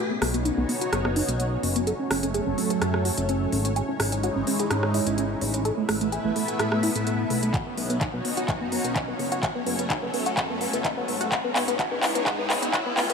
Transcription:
0.00 B3 C#4 D#4 F#4 C#5
0.11 B3
0.22 B1 B3, cross-stick, open hi-hat
0.34 B3, closed hi-hat
0.45 D#4, closed hi-hat
0.58 B1 B3
0.69 B3, open hi-hat
0.81 F#4, closed hi-hat
0.92 F#1 B3, cross-stick, closed hi-hat
1.05 B3, cross-stick
1.16 D#4, open hi-hat
1.28 B1 B3, closed hi-hat
1.40 B3, closed hi-hat
1.63 F#1 B3, open hi-hat
1.76 B3, closed hi-hat
1.87 F#3 A3 A4 C#5, closed hi-hat
1.99 C#4
2.11 F#1 C#4, cross-stick, open hi-hat
2.23 C#4, closed hi-hat
2.34 G#4, closed hi-hat
2.47 F#1 C#4
2.58 C#4, open hi-hat
2.70 A4, closed hi-hat
2.82 F#2 C#4, cross-stick, closed hi-hat
2.94 C#4, cross-stick
3.05 F#4, open hi-hat
3.18 F#1 C#4, closed hi-hat
3.29 C#4, closed hi-hat
3.52 G#1 C#4, open hi-hat
3.65 C#4, closed hi-hat
3.76 G#3 D#4 E4 G#4, closed hi-hat
3.89 C#4
4.00 G#1 C#4, cross-stick, open hi-hat
4.12 C#4, closed hi-hat
4.23 F#4, closed hi-hat
4.36 G#1 C#4
4.47 C#4, open hi-hat
4.59 G#4, closed hi-hat
4.71 G#2 C#4, cross-stick, closed hi-hat
4.83 C#4, cross-stick
4.94 E4, open hi-hat
5.07 G#1 C#4, closed hi-hat
5.18 C#4, closed hi-hat
5.41 A1 C#4, open hi-hat
5.54 C#4, closed hi-hat
5.65 A3 B3 E4 A4 B4 E5, closed hi-hat
5.77 A3
5.89 A1 A3, cross-stick, open hi-hat
6.01 A3, closed hi-hat
6.12 G#4, closed hi-hat
6.25 A1 A3
6.36 A3, open hi-hat
6.48 F#4, closed hi-hat
6.59 A2 A3, cross-stick, closed hi-hat
6.72 A3, cross-stick
6.83 E4, open hi-hat
6.95 A1 A3, closed hi-hat
7.07 A3, closed hi-hat
7.30 B1 A3, open hi-hat
7.43 A3, closed hi-hat
7.54 C#4 D#4 F#4 C#5, kick, clap, closed hi-hat, riser
7.66 B3
7.77 B1 B3, open hi-hat
7.90 B3, closed hi-hat
8.01 D#4, kick, clap, closed hi-hat
8.14 B1 B3
8.25 B3, open hi-hat
8.37 F#4, closed hi-hat
8.48 F#1 F#4, kick, clap, closed hi-hat
8.61 B3
8.72 B3, open hi-hat
8.84 B1 B3, closed hi-hat
8.96 D#4, kick, clap, closed hi-hat
9.08 B3
9.19 F#1 B3, open hi-hat
9.32 F#4, closed hi-hat
9.43 F#3 A3 F#4 A4, kick, clap, closed hi-hat
9.55 B3
9.66 F#1 B3, open hi-hat
9.79 B3, closed hi-hat
9.90 D#4, kick, clap, closed hi-hat
10.03 F#1 B3
10.14 B3, open hi-hat
10.26 F#4, closed hi-hat
10.37 F#2 F#4, kick, clap, closed hi-hat
10.50 B3
10.61 B3, open hi-hat
10.73 F#1 B3, closed hi-hat
10.85 D#4, kick, clap, closed hi-hat
10.97 B3
11.08 G#1 B3, open hi-hat
11.21 F#4, closed hi-hat
11.32 G#3 D#4 E4 F#4 C#5, kick, clap, closed hi-hat
11.44 B3
11.56 G#1 B3, clap, open hi-hat
11.68 B3, closed hi-hat
11.79 F#4, kick, clap, closed hi-hat
11.91 G#1 B3
12.03 B3, clap, open hi-hat
12.15 B3, closed hi-hat
12.26 G#2 F#4, kick, clap, closed hi-hat
12.39 B3
12.50 B3, clap, open hi-hat
12.62 G#1 B3, closed hi-hat
12.74 F#4, kick, clap, closed hi-hat
12.86 B3
12.97 A1 B3, clap, open hi-hat
13.10 B3, closed hi-hat

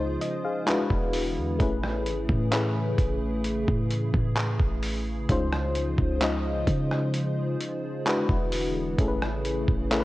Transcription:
Already playing: C#2 C#3 F3 G#3 C#4 F4 G#4 C5 D#5
0.00 D#4 C5
0.22 D#5, closed hi-hat
0.45 G#4 F5
0.66 D3 E3 G#3 B3 D4 E4 F#4 B4, clap, closed hi-hat
0.90 E1, kick
1.13 open hi-hat
1.37 E2
1.59 A1 C#3 A3 C#4 E4 G#4 B4, kick, closed hi-hat
1.83 cross-stick
2.06 G#1, closed hi-hat
2.29 A2, kick
2.51 A3 C#4 E4 G#4 B4, clap, closed hi-hat
2.98 A1, kick, closed hi-hat
3.44 closed hi-hat
3.68 A2, kick
3.91 closed hi-hat
4.14 A2, kick
4.37 clap, closed hi-hat
4.60 A1, kick
4.83 open hi-hat
5.29 C#2 F3 G#3 C#4 D#4 F4 C5, kick, closed hi-hat
5.52 cross-stick
5.75 closed hi-hat
5.98 C#2, kick
6.21 G#3 C#4 D#4 F4 D#5, clap, closed hi-hat
6.67 C#3, kick, closed hi-hat
6.91 cross-stick
7.14 closed hi-hat
7.60 closed hi-hat
8.06 D3 E3 G#3 B3 D4 E4 F#4 B4, clap, closed hi-hat
8.29 E1, kick
8.52 open hi-hat
8.98 A1 C#3 A3 C#4 E4 G#4 A4, kick, closed hi-hat
9.08 B4
9.22 cross-stick
9.45 closed hi-hat
9.68 A1, kick
9.90 A3 C#4 E4 G#4 A#4, clap, closed hi-hat
10.00 B4

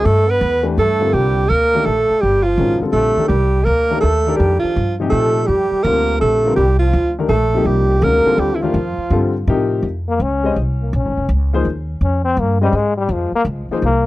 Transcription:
0.03 G2 A3 A4
0.28 B3 B4
0.41 E2
0.63 E3 A3 D4 G4 B4
0.78 G2 A3 A4
1.00 D3 G3 C4 F4 A#4
1.13 C2 G3 G4
1.49 D2 A#3 A#4
1.74 D#3 A3 D4 G4 A#4
1.85 A#1 A3 A4
2.10 muted upright bass stroke
2.21 G1 G3 G4
2.43 F3 F4
2.58 A1 D#3 G#3 C#4 F#4 A#4
2.80 D3 G3 C4 F4 A4, muted upright bass stroke
2.92 A#1 A3 A4
3.17 D#3 A3 D4 G4 A#4, muted upright bass stroke
3.28 C2 G3 G4
3.64 D2 A#3 A#4
3.91 D#3 A3 D4 G4 A#4
4.00 D#2 A3 A4
4.27 D#3 D4 G4 A4 A#4
4.36 F2 G3 G4
4.59 F3 F4
4.64 muted upright bass stroke
4.76 G2
5.00 A#2 C3 F3 D#4 G4
5.10 A#2 A3 A4
5.46 F2 G3 G4
5.72 muted upright bass stroke
5.83 D2 D3 G3 A#3 C4 F4 A#4
6.20 A#1 A3 A4
6.45 D3 G3 C4 F4 A#4
6.56 C2 G3 G4
6.79 F3 F4
6.93 D2
7.19 D#3 A3 D4 G4 A#4
7.28 A#1 A3 A4
7.54 C3 F3 A#3 D#4 G4
7.63 C2 G3 G4
8.01 D2 D#3 G#3 A#3 C#4 F#4 A#4
8.26 D3 G3 C4 F4 A4, muted upright bass stroke
8.37 D#2 G3 G4
8.53 E3 E4
8.60 D#3 F3 A3 D4 F4 G4
8.64 A#4
8.74 F2
8.98 muted upright bass stroke
9.10 G2 D3 G3 C4 F4 A4
9.47 A2 C3 F3 D#4 G4 A#4
9.83 F2
10.08 A#3
10.20 C#2 C#4
10.43 G#3 C#4 G4 C5 D#5
10.56 C2
10.82 A#3
10.93 A#1 C#4
11.05 G#1
11.17 F1
11.29 C#2
11.53 F3 A#3 D#4 G#4 C5
11.65 D#2
12.01 F2 C#4
12.25 C4
12.37 G2 A#3
12.61 G3 G#3 C#4 G4 C5 D#5
12.73 G#2 G#3
12.98 G3
13.09 F2 F3
13.32 A#3, muted upright bass stroke
13.45 C#2
13.69 F3 A#3 D#4 G#4 C5, muted upright bass stroke
13.82 C2 A#3

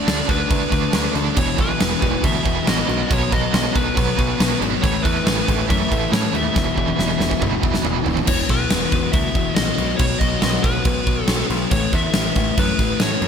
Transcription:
Already playing: D3 A3 E4
0.06 D2 D3 A3 D4 D5, snare, crash
0.28 D2 D3 A3 D4 B4, kick, crash
0.50 D2 D3 A3 D4, kick, crash
0.72 D2 D3 A3 D4, kick, crash
0.93 D2 D3 A3 D4, snare, crash
1.15 D2 D3 A3 D4, crash
1.35 E1 E2 B2 E3 B3 F#4 C#5, kick, crash
1.58 B1 E2 B2 E3 B4, kick, crash
1.80 E1 E2 B2 E3, snare, crash
2.02 E1 E2 B2 E3, kick, crash
2.23 D2 E2 B2 E3 E5, kick, crash
2.45 E1 E2 B2 E3, kick, crash
2.67 A1 E2 B2 E3 D#5, snare, crash
2.88 B1 B2 F#3 B3 C#5, crash
3.10 B1 B2 F#3 B3 C#5, kick, crash
3.31 B1 B2 F#3 B3 D#5, kick, crash
3.53 B1 B2 F#3 B3 D#5, snare, crash
3.75 B1 B2 F#3 B3 B4, kick, crash
3.95 B1 B2 F#3 B3, kick, crash
4.17 B1 B2 F#3 B3, kick, crash
4.39 B1 B2 F#3 B3, snare, crash
4.61 G#1 B2 F#3 B3, crash
4.82 A1 A2 E3 A3 E4 B4 C#5, kick, crash
5.03 E2 A2 E3 A3 B4, kick, crash
5.26 A1 A2 E3 A3, snare, crash
5.48 A1 A2 E3 A3, kick, crash
5.69 F#2 A2 E3 A3 E5, kick, crash
5.91 A1 A2 E3 A3, kick, crash
6.12 A2 E3 A3 C#5, snare, crash
6.33 D#2 A2 E3 A3 E5, crash
6.56 E1 E2 B2 E3 B3 F#4, kick, snare
6.77 E1 E2 B2 E3, kick
6.88 high tom
6.99 E1 E2 B2 E3, snare
7.20 E1 E2 B2 E3, snare
7.31 kick
7.41 E1 E2 B2 E3, kick, mid tom
7.63 E1 E2 B2 E3, kick
7.74 snare
7.85 E1 E2 B2 E3, floor tom
8.05 E1 E2 B2 E3, floor tom
8.17 floor tom
8.27 E1 E2 B2 E3 B3 F#4 C#5, kick, crash
8.49 B1 E2 B2 E3 B4, kick, crash
8.70 E1 E2 B2 E3, snare, crash
8.92 E1 E2 B2 E3, kick, crash
9.12 D2 E2 B2 E3 E5, kick, crash
9.35 E1 E2 B2 E3, kick, crash
9.55 A#1 E2 B2 E3 D#5, snare, crash
9.77 B1 B2 F#3 B3 C#5, crash
9.97 B1 B2 F#3 B3 C#5, kick, crash
10.19 B1 B2 F#3 B3 D#5, kick, crash
10.42 B1 B2 F#3 B3 D#5, snare, crash
10.63 B1 B2 F#3 B3 B4, kick, crash
10.85 B1 B2 F#3 B3, kick, crash
11.07 B1 B2 F#3 B3, kick, crash
11.22 A4
11.28 B1 B2 F#3 B3, snare, crash
11.50 B1 B2 F#3 B3, crash
11.71 A1 A2 E3 A3 E4 B4 C#5, kick, crash
11.92 E2 A2 E3 A3 E5, kick, crash
12.14 A1 A2 E3 A3, snare, crash
12.35 A1 A2 E3 A3, kick, crash
12.57 F#2 A2 E3 A3 B4, kick, crash
12.79 A1 A2 E3 A3, kick, crash
13.00 A2 E3 A3 C#5, snare, crash
13.22 F#2 A2 E3 A3, crash

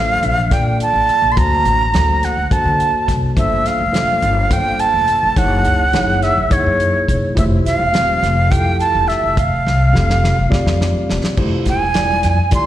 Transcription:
Already playing: A1 A#3 D4 F4 A4 C5 F5
0.23 A#1, closed hi-hat
0.51 A#2 A#3 D4 F4 A4 D5 G5, kick, snare, closed hi-hat
0.80 A5, closed hi-hat
0.93 A1
1.09 closed hi-hat
1.22 A#1
1.32 C6
1.36 D2 A3 A#3 D4 F#4 C5 A#5, kick, closed hi-hat
1.65 A1, closed hi-hat
1.93 D2 A#3 D4 F#4 A4 C5, snare, closed hi-hat
2.23 F#5, snare, closed hi-hat
2.37 D2
2.50 A#3 D4 F#4 A4 C5 A5, kick, closed hi-hat
2.65 D3
2.80 closed hi-hat
3.08 C2, kick, snare, closed hi-hat
3.23 muted upright bass stroke
3.36 G1 A#3 D4 F4 A4 C5 E5, kick, closed hi-hat
3.66 F5, muted upright bass stroke, snare, closed hi-hat
3.81 F1
3.92 A#3 D4 F4 A4 C5, snare, closed hi-hat
4.22 G1, closed hi-hat
4.50 G2 A#3 D4 F4 A4 C5 G5, kick, closed hi-hat
4.79 A5, closed hi-hat
4.94 F1
5.08 closed hi-hat
5.23 G1
5.36 F#1 A#3 D#4 E4 G#4 C#5 F#5, kick, closed hi-hat
5.65 C#2, closed hi-hat
5.93 F#1 A#3 D#4 E4 G#4 C#5, snare, closed hi-hat
6.22 E5, snare, closed hi-hat
6.38 F#1
6.50 A#3 D#4 E4 G#4 C#5, muted upright bass stroke, kick, closed hi-hat
6.66 F#2
6.80 closed hi-hat
7.08 E1, kick, closed hi-hat
7.23 muted upright bass stroke
7.35 F1 A3 E4 F4 G4 C5 E5, kick, closed hi-hat
7.66 F5, muted upright bass stroke, snare, closed hi-hat
7.79 E1
7.93 A3 C4 F4 G4 C5, snare, closed hi-hat
8.23 F1, snare, closed hi-hat
8.50 A3 E4 F4 G4 A4 G5, kick, closed hi-hat
8.80 A5, closed hi-hat
8.95 E1
9.08 E5, snare, closed hi-hat
9.24 F1
9.37 F5, kick, closed hi-hat
9.67 C2, snare
9.93 F1 A3 C4 F4 G4 A4, snare
10.10 snare
10.24 snare
10.38 F1
10.49 A3 C4 F4 G4 D5, kick, snare
10.66 F2, snare
10.81 snare
11.09 E1, snare
11.24 muted upright bass stroke, snare
11.37 F1 A3 E4 F4 G4 C5, kick, crash
11.66 E1 G#5, kick, snare, closed hi-hat
11.94 G3 A3 E4 F4 D5, snare, closed hi-hat
12.23 F2, snare, closed hi-hat
12.51 A3 E4 F4 G4 D5 C6, muted upright bass stroke, kick, snare, closed hi-hat

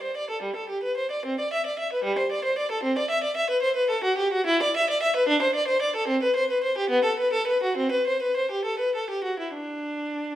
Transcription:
0.03 C5
0.17 D5
0.30 A4
0.42 G3
0.56 A4
0.69 G4
0.83 B4
0.97 C5
1.11 D5
1.25 C4
1.40 D5
1.53 E5
1.66 D5
1.79 E5
1.93 B4
2.04 G3
2.18 C5
2.32 D5
2.44 C5
2.58 D5
2.71 A4
2.83 C4
2.98 D5
3.10 E5
3.24 D5
3.37 E5
3.50 B4
3.62 C5
3.76 B4
3.90 A4
4.04 F#4
4.18 G4
4.33 F#4
4.46 E4
4.62 D5
4.77 E5
4.90 D5
5.03 E5
5.16 B4
5.28 D4
5.42 C5
5.55 D5
5.67 C5
5.82 D5
5.96 A4
6.08 C4
6.22 B4
6.36 C5
6.50 B4
6.63 C5
6.78 G4
6.89 B3
7.05 A4
7.19 B4
7.33 A4
7.47 B4
7.63 F#4
7.77 C4
7.91 B4
8.07 C5
8.22 B4
8.36 C5
8.51 G4
8.65 A4
8.79 B4
8.95 A4
9.10 G4
9.24 F#4
9.39 E4
9.54 D4

